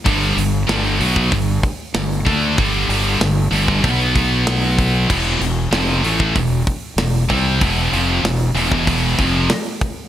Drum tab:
CC |----------------|----------------|x---------------|----------------|
HH |o-o-o-o-o-o-o-o-|o-o-o-o-o-o-o-o-|--o-o-o-o-o-o-o-|o-o-o-o-o-o-o-o-|
SD |----o-------o---|----o-------o---|----o-------o---|----o-------o---|
BD |o------oo-o---o-|o------oo-o---o-|o------oo-o---o-|o------oo-o---o-|